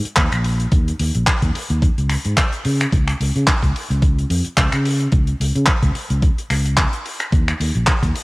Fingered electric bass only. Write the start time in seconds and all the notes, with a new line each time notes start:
0.05 muted fingered electric bass stroke
0.17 D#2
0.32 A#1
0.72 D#2
1.00 D#2
1.15 A#1
1.42 D#2
1.70 D#2
1.98 C#2
2.25 G#2
2.65 C#3
2.92 C#2
3.20 C#2
3.36 C#3
3.63 C#2
3.90 C#2
4.30 F2
4.46 muted fingered electric bass stroke
4.57 C#2
4.73 C#3
5.12 C#2
5.40 C#2
5.55 C#3
5.83 C#2
5.95 muted fingered electric bass stroke
6.10 C#2
6.50 C#2
7.32 D#2
7.60 D#2
7.75 A#1
8.03 D#2